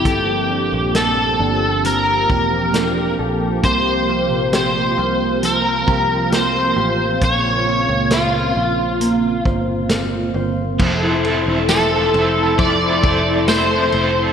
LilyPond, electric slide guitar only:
\new Staff \with { instrumentName = "Electric slide guitar" } { \time 4/4 \key f \major \tempo 4 = 67 g'4 a'4 bes'4. r8 | c''4 c''4 bes'4 c''4 | des''4 f'4. r4. | r4 a'4 d''4 c''4 | }